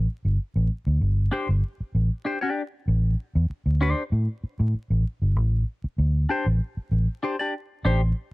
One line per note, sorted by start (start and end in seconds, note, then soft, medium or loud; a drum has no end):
0.25 0.37 G1 medium
0.56 0.68 A1 medium
0.87 0.99 D2 medium
1.01 1.27 G1 medium
1.31 1.47 D4 medium
1.31 1.47 G4 medium
1.31 1.48 C5 medium
1.49 1.61 G1 medium
1.80 muted fingered electric bass stroke soft
1.95 2.09 A1 medium
2.25 2.37 D4 medium
2.25 2.37 G4 medium
2.25 2.38 C5 medium
2.41 2.62 D4 medium
2.41 2.62 G4 medium
2.41 2.61 D5 medium
2.88 3.14 A1 loud
3.35 3.48 E2 medium
3.50 muted fingered electric bass stroke soft
3.66 3.92 D2 medium
3.81 4.02 D4 medium
3.81 4.02 G4 medium
3.81 4.03 C5 medium
4.12 4.26 A2 loud
4.44 muted fingered electric bass stroke soft
4.60 4.72 A2 loud
4.74 muted fingered electric bass stroke soft
4.90 5.03 A1 medium
5.22 5.36 G1 medium
5.36 5.63 A1 medium
5.84 muted fingered electric bass stroke soft
5.98 6.25 D2 medium
6.29 6.45 D4 medium
6.29 6.45 G4 medium
6.29 6.46 C5 medium
6.46 6.59 A1 medium
6.77 muted fingered electric bass stroke soft
6.91 7.06 A1 medium
7.23 7.35 D4 medium
7.23 7.35 G4 medium
7.23 7.36 C5 medium
7.39 7.54 D4 medium
7.39 7.54 G4 medium
7.39 7.53 D5 medium
7.85 8.12 A1 loud
7.85 8.00 D4 medium
7.85 8.01 G4 medium
7.85 8.01 C5 loud